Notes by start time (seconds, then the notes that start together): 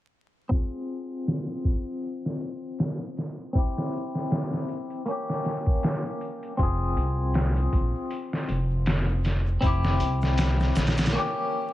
0.49 C4 F4, kick, closed hi-hat
0.55 G#4
0.89 closed hi-hat
1.27 snare, closed hi-hat
1.49 closed hi-hat
1.65 kick, closed hi-hat
2.02 closed hi-hat
2.26 snare
2.41 closed hi-hat
2.79 snare, closed hi-hat
3.17 snare, closed hi-hat, shaker
3.53 C4 E4, kick, closed hi-hat
3.58 G4
3.78 snare
3.93 closed hi-hat, shaker
4.15 snare
4.31 snare, closed hi-hat
4.53 snare
4.69 closed hi-hat, shaker
4.90 closed hi-hat
5.06 A#3 C#4, closed hi-hat
5.11 G4
5.28 snare, shaker
5.45 snare, closed hi-hat, shaker
5.66 kick, shaker
5.83 snare, closed hi-hat
6.04 shaker
6.21 closed hi-hat, shaker
6.43 closed hi-hat
6.57 F1 C4 F4, kick, closed hi-hat, shaker
6.63 G#4
6.97 C2, closed hi-hat, shaker
7.19 shaker
7.34 snare, closed hi-hat, shaker
7.56 closed hi-hat, shaker
7.73 A#1, kick, closed hi-hat, shaker
7.95 shaker
8.11 closed hi-hat, shaker
8.33 snare, shaker
8.49 F1, closed hi-hat, shaker
8.71 shaker
8.86 snare, closed hi-hat, shaker
9.08 shaker
9.24 snare, closed hi-hat, shaker
9.47 shaker
9.61 F1 C4 E4, kick, closed hi-hat, shaker
9.66 G4
9.83 snare, shaker
10.00 C2, closed hi-hat, shaker
10.21 snare, shaker
10.38 snare, closed hi-hat, shaker
10.60 snare, shaker
10.75 A#1, snare, closed hi-hat, shaker
10.87 snare, closed hi-hat
10.97 snare, closed hi-hat, shaker
11.06 snare, closed hi-hat
11.13 A#3 C#4
11.18 G4